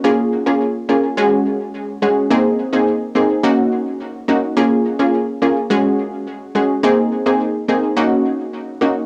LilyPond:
\new Staff \with { instrumentName = "Synth pluck" } { \time 4/4 \key bes \minor \tempo 4 = 106 <bes des' f' aes'>8. <bes des' f' aes'>16 r8 <bes des' f' aes'>16 r16 <aes des' ges' aes'>4. <aes des' ges' aes'>8 | <bes c' ees' aes'>8. <bes c' ees' aes'>16 r8 <bes c' ees' aes'>16 r16 <bes des' ees' ges'>4. <bes des' ees' ges'>16 r16 | <bes des' f' aes'>8. <bes des' f' aes'>16 r8 <bes des' f' aes'>16 r16 <aes des' ges' aes'>4. <aes des' ges' aes'>16 r16 | <bes c' ees' aes'>8. <bes c' ees' aes'>16 r8 <bes c' ees' aes'>16 r16 <bes des' ees' ges'>4. <bes des' ees' ges'>16 r16 | }